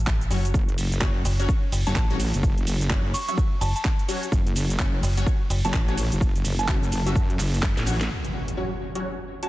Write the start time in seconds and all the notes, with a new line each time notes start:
0.07 A1, kick, clap, shaker
0.21 closed hi-hat, shaker
0.30 F#1 F#3 C#4 F#4 C#5, open hi-hat, shaker
0.45 closed hi-hat, shaker
0.54 F#1, kick, shaker
0.69 closed hi-hat
0.78 open hi-hat, ride, shaker
0.92 closed hi-hat, shaker
1.01 F#1 F#3 C#4 F#4 C#5, kick, clap, shaker
1.25 F#1, open hi-hat, ride, shaker
1.39 F#3 C#4 F#4 C#5, closed hi-hat, shaker
1.49 kick, shaker
1.72 F#1, open hi-hat, ride, shaker
1.87 F#1 F#3 C#4 F#4 C#5 A5, closed hi-hat, shaker
1.96 A1 A5, kick, clap, shaker
2.10 F#3 C#4 F#4 C#5, closed hi-hat
2.20 open hi-hat, ride, shaker
2.34 F#1, closed hi-hat, shaker
2.43 kick, shaker
2.58 closed hi-hat
2.67 F#1, open hi-hat, ride, shaker
2.81 closed hi-hat, shaker
2.90 F#3 C#4 F#4 C#5, kick, clap, shaker
3.14 C#6, open hi-hat, ride, shaker
3.28 F#3 C#4 F#4 E5 C#6, closed hi-hat, shaker
3.38 kick, shaker
3.61 F#1 A5, open hi-hat, ride, shaker
3.76 A5, closed hi-hat, shaker
3.85 kick, clap, shaker
3.99 closed hi-hat
4.08 F#3 C#4 F#4 C#5, open hi-hat, ride, shaker
4.23 closed hi-hat, shaker
4.32 F#1, kick, shaker
4.47 closed hi-hat
4.56 open hi-hat, ride, shaker
4.70 closed hi-hat, shaker
4.79 F#1 F#3 C#4 F#4 C#5, kick, clap, shaker
5.03 F#1, open hi-hat, ride, shaker
5.17 F#3 C#4 F#4 C#5, closed hi-hat, shaker
5.27 kick, shaker
5.50 F#1, open hi-hat, ride, shaker
5.64 F#1 F#3 C#4 F#4 C#5 A5, closed hi-hat, shaker
5.74 A1 A5, kick, clap, shaker
5.88 F#3 C#4 F#4 C#5, closed hi-hat
5.97 open hi-hat, ride, shaker
6.12 F#1, closed hi-hat, shaker
6.21 kick, shaker
6.36 closed hi-hat, shaker
6.45 F#1, open hi-hat, ride, shaker
6.59 A5, closed hi-hat, shaker
6.68 F#3 C#4 F#4 C#5, kick, clap, shaker
6.83 shaker
6.92 F#1, open hi-hat, ride, shaker
7.06 F#3 C#4 F#4 E5, closed hi-hat, shaker
7.16 F#2, kick, shaker
7.30 closed hi-hat
7.39 F#1, clap, open hi-hat, ride, shaker
7.54 open hi-hat, shaker
7.63 kick, snare, clap, shaker
7.77 A1, snare, closed hi-hat, shaker
7.86 F#3 C#4 F#4 C#5, open hi-hat, ride, shaker
8.01 snare, closed hi-hat, shaker
8.10 impact
8.25 closed hi-hat
8.48 closed hi-hat
8.57 F#3 C#4 F#4 C#5
8.95 F#3 C#4 F#4 C#5, closed hi-hat
9.43 F#3 C#4 F#4 C#5 A5, closed hi-hat